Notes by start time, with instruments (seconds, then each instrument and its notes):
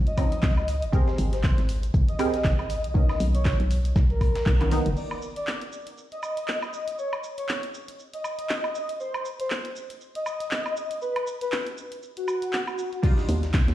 Already playing: synth stab F3 C4 C#4 D#4
0.07 soft synth lead D#5, closed hi-hat, shaker
0.17 synth stab F3 C4 C#4 D#4, kick, open hi-hat, tambourine, high woodblock, shaker
0.32 closed hi-hat, shaker
0.43 fm bass C#2, kick, snare, clap, tambourine, shaker
0.57 high woodblock, shaker
0.68 open hi-hat, tambourine, shaker
0.82 fm bass G#1, closed hi-hat, shaker
0.92 synth stab C4 G4 G#4 A#4, soft synth lead C5, kick, tambourine, shaker
1.08 snare, shaker
1.18 fm bass G#1, open hi-hat, tambourine, shaker
1.33 soft synth lead C5, snare, closed hi-hat, shaker
1.44 kick, snare, clap, tambourine, shaker
1.58 fm bass G#1, snare, closed hi-hat, shaker
1.69 open hi-hat, tambourine, shaker
1.83 closed hi-hat, shaker
1.94 fm bass G#1, kick, tambourine, shaker
2.09 soft synth lead D#5, closed hi-hat, shaker
2.19 synth stab C4 G4 G#4 A#4, open hi-hat, tambourine, high woodblock, shaker
2.34 snare, closed hi-hat, shaker
2.44 fm bass G#1, kick, snare, clap, tambourine, shaker
2.59 high woodblock, shaker
2.70 open hi-hat, tambourine, shaker
2.84 fm bass B1, closed hi-hat, shaker
2.94 synth stab D#3 A#3 B3 C#4, soft synth lead D#5, kick, tambourine, shaker
3.09 snare, high woodblock, shaker
3.20 fm bass B1, open hi-hat, tambourine, shaker
3.35 soft synth lead C#5, closed hi-hat, shaker
3.45 kick, snare, clap, tambourine, shaker
3.60 fm bass B1, closed hi-hat, shaker
3.71 open hi-hat, tambourine, shaker
3.85 closed hi-hat, shaker
3.96 fm bass B1, kick, snare, tambourine, shaker
4.10 soft synth lead A#4, closed hi-hat, shaker
4.21 kick, open hi-hat, tambourine, high woodblock, shaker
4.35 snare, closed hi-hat, tambourine, shaker
4.46 fm bass B1, kick, clap, shaker
4.60 synth stab D#3 A#3 B3 C#4, clap, closed hi-hat, tambourine, high woodblock, shaker
4.71 synth stab D#3 A#3 B3 D#4, snare, open hi-hat, tambourine, shaker
4.86 fm bass F#1, closed hi-hat, shaker
4.97 soft synth lead D5, crash, shaker
5.11 high woodblock, shaker
5.22 shaker
5.36 soft synth lead D5, closed hi-hat, shaker
5.47 clap, shaker
5.61 closed hi-hat, shaker
5.72 shaker
5.87 closed hi-hat, shaker
5.98 shaker
6.12 soft synth lead D#5, closed hi-hat, shaker
6.23 high woodblock, shaker
6.37 closed hi-hat, shaker
6.48 clap, shaker
6.62 high woodblock, shaker
6.73 shaker
6.88 closed hi-hat, shaker
6.98 soft synth lead C#5, shaker
7.13 high woodblock, shaker
7.24 shaker
7.38 soft synth lead C#5, closed hi-hat, shaker
7.49 clap, shaker
7.63 closed hi-hat, shaker
7.74 shaker
7.88 closed hi-hat, shaker
7.99 shaker
8.14 soft synth lead D#5, closed hi-hat, shaker
8.24 high woodblock, shaker
8.39 closed hi-hat, shaker
8.49 clap, shaker
8.64 high woodblock, shaker
8.75 shaker
8.89 closed hi-hat, shaker
9.00 soft synth lead C5, shaker
9.14 high woodblock, shaker
9.25 shaker
9.40 soft synth lead C5, closed hi-hat, shaker
9.50 clap, shaker
9.65 closed hi-hat, shaker
9.76 shaker
9.90 closed hi-hat, shaker
10.01 shaker
10.15 soft synth lead D#5, closed hi-hat, shaker
10.26 high woodblock, shaker
10.41 closed hi-hat, shaker
10.51 clap, shaker
10.66 high woodblock, shaker
10.77 shaker
10.91 closed hi-hat, shaker
11.02 soft synth lead B4, shaker
11.16 closed hi-hat, high woodblock, shaker
11.27 shaker
11.41 soft synth lead B4, closed hi-hat, shaker
11.52 clap, shaker
11.66 closed hi-hat, shaker
11.77 shaker
11.92 closed hi-hat, shaker
12.03 shaker
12.17 soft synth lead F#4, closed hi-hat, shaker
12.28 high woodblock, shaker
12.42 closed hi-hat, shaker
12.53 clap, shaker
12.67 high woodblock, shaker
12.78 shaker
12.93 closed hi-hat, shaker
13.02 synth stab G3 D4 D#4 F4, kick, closed hi-hat, crash, tambourine, shaker
13.18 snare, shaker
13.29 fm bass D#2, open hi-hat, tambourine, shaker
13.43 snare, closed hi-hat, shaker
13.54 kick, snare, clap, closed hi-hat, tambourine, shaker
13.68 fm bass D#2, snare, closed hi-hat, shaker